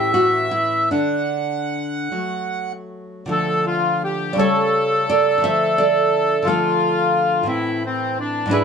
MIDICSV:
0, 0, Header, 1, 3, 480
1, 0, Start_track
1, 0, Key_signature, 2, "major"
1, 0, Tempo, 792602
1, 554, Time_signature, 6, 3, 24, 8
1, 2006, Key_signature, -1, "minor"
1, 2006, Tempo, 711744
1, 3446, Tempo, 682594
1, 5693, End_track
2, 0, Start_track
2, 0, Title_t, "Bandoneon"
2, 0, Program_c, 0, 23
2, 0, Note_on_c, 0, 76, 73
2, 540, Note_off_c, 0, 76, 0
2, 557, Note_on_c, 0, 78, 58
2, 1649, Note_off_c, 0, 78, 0
2, 2006, Note_on_c, 0, 69, 67
2, 2236, Note_off_c, 0, 69, 0
2, 2244, Note_on_c, 0, 65, 65
2, 2486, Note_off_c, 0, 65, 0
2, 2496, Note_on_c, 0, 67, 61
2, 2726, Note_on_c, 0, 69, 72
2, 2735, Note_off_c, 0, 67, 0
2, 4149, Note_on_c, 0, 65, 67
2, 4167, Note_off_c, 0, 69, 0
2, 4864, Note_off_c, 0, 65, 0
2, 4875, Note_on_c, 0, 64, 63
2, 5121, Note_off_c, 0, 64, 0
2, 5140, Note_on_c, 0, 60, 63
2, 5368, Note_off_c, 0, 60, 0
2, 5381, Note_on_c, 0, 62, 67
2, 5610, Note_on_c, 0, 64, 72
2, 5612, Note_off_c, 0, 62, 0
2, 5693, Note_off_c, 0, 64, 0
2, 5693, End_track
3, 0, Start_track
3, 0, Title_t, "Nylon-string guitar"
3, 0, Program_c, 1, 24
3, 0, Note_on_c, 1, 45, 58
3, 0, Note_on_c, 1, 52, 42
3, 0, Note_on_c, 1, 61, 41
3, 0, Note_on_c, 1, 67, 82
3, 72, Note_off_c, 1, 67, 0
3, 84, Note_on_c, 1, 66, 82
3, 305, Note_off_c, 1, 66, 0
3, 310, Note_on_c, 1, 64, 66
3, 531, Note_off_c, 1, 52, 0
3, 532, Note_off_c, 1, 61, 0
3, 535, Note_off_c, 1, 45, 0
3, 542, Note_off_c, 1, 64, 0
3, 551, Note_on_c, 1, 62, 63
3, 557, Note_on_c, 1, 50, 48
3, 1258, Note_off_c, 1, 62, 0
3, 1263, Note_off_c, 1, 50, 0
3, 1282, Note_on_c, 1, 54, 34
3, 1285, Note_on_c, 1, 57, 35
3, 1973, Note_on_c, 1, 50, 49
3, 1980, Note_off_c, 1, 54, 0
3, 1982, Note_off_c, 1, 57, 0
3, 1983, Note_on_c, 1, 53, 43
3, 1992, Note_on_c, 1, 57, 45
3, 2692, Note_on_c, 1, 74, 60
3, 2694, Note_off_c, 1, 50, 0
3, 2696, Note_on_c, 1, 49, 54
3, 2700, Note_off_c, 1, 53, 0
3, 2705, Note_off_c, 1, 57, 0
3, 2710, Note_on_c, 1, 55, 46
3, 2721, Note_on_c, 1, 57, 42
3, 2732, Note_off_c, 1, 74, 0
3, 2735, Note_on_c, 1, 73, 88
3, 2745, Note_on_c, 1, 69, 68
3, 3190, Note_off_c, 1, 69, 0
3, 3193, Note_off_c, 1, 73, 0
3, 3208, Note_on_c, 1, 74, 89
3, 3217, Note_on_c, 1, 70, 62
3, 3396, Note_off_c, 1, 57, 0
3, 3399, Note_on_c, 1, 50, 53
3, 3405, Note_off_c, 1, 49, 0
3, 3412, Note_off_c, 1, 55, 0
3, 3416, Note_on_c, 1, 53, 45
3, 3427, Note_on_c, 1, 57, 41
3, 3432, Note_off_c, 1, 70, 0
3, 3435, Note_off_c, 1, 74, 0
3, 3439, Note_on_c, 1, 76, 93
3, 3447, Note_on_c, 1, 72, 70
3, 3672, Note_off_c, 1, 72, 0
3, 3676, Note_off_c, 1, 76, 0
3, 3681, Note_on_c, 1, 74, 82
3, 3692, Note_on_c, 1, 69, 59
3, 4125, Note_off_c, 1, 50, 0
3, 4133, Note_on_c, 1, 50, 53
3, 4134, Note_off_c, 1, 53, 0
3, 4140, Note_off_c, 1, 57, 0
3, 4145, Note_off_c, 1, 69, 0
3, 4148, Note_off_c, 1, 74, 0
3, 4149, Note_on_c, 1, 53, 46
3, 4163, Note_on_c, 1, 57, 46
3, 4169, Note_on_c, 1, 69, 73
3, 4181, Note_on_c, 1, 65, 58
3, 4840, Note_off_c, 1, 53, 0
3, 4842, Note_on_c, 1, 45, 56
3, 4848, Note_off_c, 1, 50, 0
3, 4860, Note_off_c, 1, 69, 0
3, 4860, Note_on_c, 1, 52, 45
3, 4864, Note_off_c, 1, 57, 0
3, 4866, Note_off_c, 1, 65, 0
3, 4870, Note_on_c, 1, 60, 46
3, 5559, Note_off_c, 1, 45, 0
3, 5562, Note_on_c, 1, 44, 58
3, 5565, Note_off_c, 1, 52, 0
3, 5573, Note_off_c, 1, 60, 0
3, 5574, Note_on_c, 1, 52, 49
3, 5588, Note_on_c, 1, 62, 48
3, 5600, Note_on_c, 1, 71, 89
3, 5610, Note_on_c, 1, 68, 66
3, 5693, Note_off_c, 1, 44, 0
3, 5693, Note_off_c, 1, 52, 0
3, 5693, Note_off_c, 1, 62, 0
3, 5693, Note_off_c, 1, 68, 0
3, 5693, Note_off_c, 1, 71, 0
3, 5693, End_track
0, 0, End_of_file